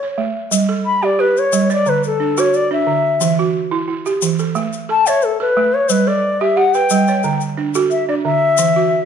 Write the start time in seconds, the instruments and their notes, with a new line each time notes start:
Already playing: balafon A4, bansuri C#5
0.03 balafon C#5
0.18 balafon A3
0.51 balafon G3, shaker
0.69 balafon A4
0.85 bansuri B5
1.03 balafon G4, bansuri D5
1.19 balafon G4, bansuri B4
1.37 bansuri C#5, shaker
1.53 balafon G3, shaker
1.70 balafon C#5, bansuri D5, shaker
1.86 balafon D3, bansuri B4, shaker
2.04 bansuri A4, shaker
2.20 balafon D4
2.37 balafon F#4 A4, bansuri C#5, shaker
2.54 bansuri D5, shaker
2.71 balafon D4, bansuri E5
2.87 balafon D3
3.21 balafon E3, shaker
3.39 balafon F#4
3.71 balafon E4
3.88 balafon E4
4.06 balafon G4, shaker
4.22 balafon E3, shaker
4.39 balafon A4, shaker
4.55 balafon A3, shaker
4.73 shaker
4.89 balafon A4, bansuri A5
5.06 balafon C#5 E5, bansuri C#5, shaker
5.22 bansuri A4, shaker
5.40 balafon A4, bansuri B4
5.57 balafon A3
5.74 bansuri C#5
5.89 balafon G3, bansuri B4, shaker
6.07 balafon A4, bansuri D5
6.41 balafon G4, bansuri E5
6.57 balafon G4, bansuri F#5
6.74 balafon B4, bansuri G5, shaker
6.90 balafon G3, shaker
7.07 balafon C#5, shaker
7.23 balafon D3, shaker
7.41 shaker
7.57 balafon D4
7.75 balafon F#4 A4, shaker
7.91 bansuri E5, shaker
8.09 balafon D4, bansuri D5
8.24 balafon D3, bansuri E5
8.57 balafon E3, shaker
8.76 balafon F#4